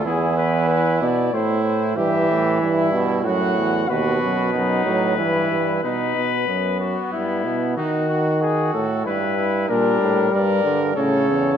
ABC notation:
X:1
M:3/4
L:1/8
Q:1/4=94
K:Ephr
V:1 name="Trumpet"
^G B B d c c | e3 z ^f2 | B6 | B3 ^F E2 |
^F2 ^G A B2 | [K:Gdor] B2 d2 ^c2 |]
V:2 name="Trumpet"
E4 E2 | G2 E2 ^F2 | ^F2 ^D2 E2 | ^D2 B,4 |
^D ^F F2 E E | [K:Gdor] D2 B2 A2 |]
V:3 name="Trombone" clef=bass
z6 | E,3 B,, A,,2 | B,,3 ^F, E,2 | z6 |
z6 | [K:Gdor] G,3 D, ^C,2 |]
V:4 name="Euphonium" clef=bass
E,,3 B,, A,,2 | G,, A,, G,,2 ^F,, E,, | ^D,, ^F,, F,, A,, G,, G,, | B,, B,, ^F,,2 G,, B,, |
^D,3 A,, G,,2 | [K:Gdor] B,, A,, G,, G,, A,, E,, |]